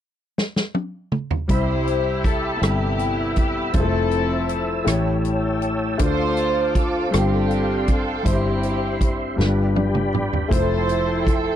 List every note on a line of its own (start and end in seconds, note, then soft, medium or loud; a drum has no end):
0.38 snare medium
0.56 snare medium
0.75 high tom medium
1.12 mid tom medium
1.31 floor tom medium
1.48 2.58 C2 medium
1.48 2.58 C3 soft
1.48 2.18 G3 medium
1.48 2.19 C4 medium
1.48 2.19 E4 medium
1.48 4.85 E5 soft
1.48 3.74 G5 soft
1.48 2.20 B5 medium
1.48 3.73 B5 soft
1.48 kick medium
1.48 closed hi-hat medium
1.52 2.59 E4 medium
1.52 2.59 G4 medium
1.52 2.23 C5 medium
1.52 5.98 E6 medium
1.87 closed hi-hat soft
2.24 2.63 A4 medium
2.24 kick medium
2.24 closed hi-hat soft
2.61 3.71 G1 medium
2.61 3.32 C3 soft
2.61 3.31 G3 soft
2.61 3.71 B3 medium
2.61 3.32 E4 soft
2.61 3.71 E4 medium
2.61 3.38 G4 medium
2.61 3.33 A4 medium
2.61 cross-stick medium
2.61 closed hi-hat medium
2.99 closed hi-hat soft
3.36 3.73 G4 medium
3.36 kick medium
3.36 closed hi-hat soft
3.73 4.83 F1 medium
3.73 4.45 F3 medium
3.73 3.80 G3 soft
3.73 4.44 E4 medium
3.73 4.86 C5 soft
3.73 4.45 C5 medium
3.73 7.09 A5 soft
3.73 kick medium
3.73 closed hi-hat medium
3.78 4.47 A3 medium
3.78 4.85 C4 soft
3.78 4.85 E4 soft
3.78 4.61 A4 medium
4.11 closed hi-hat soft
4.49 closed hi-hat soft
4.84 5.96 A1 medium
4.84 5.95 A2 medium
4.84 5.56 A3 medium
4.84 5.56 E4 medium
4.84 5.57 G4 medium
4.84 5.98 C#5 soft
4.84 5.57 C#5 medium
4.84 5.99 G5 soft
4.84 cross-stick medium
4.84 closed hi-hat medium
5.25 closed hi-hat soft
5.62 closed hi-hat soft
5.98 7.09 D2 medium
5.98 7.08 D3 soft
5.98 6.69 A3 medium
5.98 6.69 D4 medium
5.98 6.70 F4 medium
5.98 7.11 C5 soft
5.98 6.70 C5 medium
5.98 8.22 F5 soft
5.98 7.11 D6 soft
5.98 kick medium
5.98 closed hi-hat medium
6.03 7.11 F4 medium
6.03 6.77 A4 medium
6.03 6.73 C5 medium
6.37 closed hi-hat soft
6.75 7.14 A4 medium
6.75 kick medium
6.75 closed hi-hat soft
7.11 8.22 G1 medium
7.11 8.21 G2 soft
7.11 7.82 G3 medium
7.11 7.82 C4 soft
7.11 7.83 F4 soft
7.11 8.24 A4 soft
7.11 7.83 A4 medium
7.11 8.24 G5 soft
7.11 9.36 C6 medium
7.11 cross-stick medium
7.11 closed hi-hat medium
7.15 8.22 C4 medium
7.15 8.22 D4 medium
7.15 7.86 G4 medium
7.51 closed hi-hat soft
7.88 8.27 A4 medium
7.88 kick medium
7.88 closed hi-hat soft
8.23 9.34 G1 medium
8.23 9.34 G2 soft
8.23 8.94 G3 medium
8.23 8.95 C4 medium
8.23 8.95 E4 medium
8.23 10.48 G4 soft
8.23 9.37 C5 soft
8.23 8.96 C5 medium
8.23 9.37 E5 soft
8.23 kick medium
8.23 closed hi-hat medium
8.28 9.36 C4 soft
8.28 9.36 E4 soft
8.28 9.12 G4 medium
8.63 closed hi-hat soft
9.01 kick medium
9.01 closed hi-hat soft
9.36 10.47 G1 medium
9.36 10.47 G2 medium
9.36 10.07 G3 medium
9.36 10.08 D4 medium
9.36 10.08 F4 soft
9.36 10.09 B4 medium
9.36 snare soft
9.40 10.51 D5 soft
9.40 11.56 G5 soft
9.40 10.51 B5 medium
9.76 high tom medium
9.95 mid tom medium
10.15 mid tom medium
10.33 floor tom medium
10.48 11.56 F1 medium
10.48 11.20 F3 medium
10.48 11.20 A3 medium
10.48 11.20 E4 medium
10.48 11.56 A4 soft
10.48 11.21 C5 medium
10.48 11.56 E5 soft
10.48 11.56 C6 medium
10.48 kick medium
10.48 closed hi-hat medium
10.53 11.56 E4 medium
10.53 11.24 A4 medium
10.53 11.23 C5 medium
10.89 closed hi-hat soft
11.25 11.56 A4 medium
11.25 kick medium
11.25 closed hi-hat soft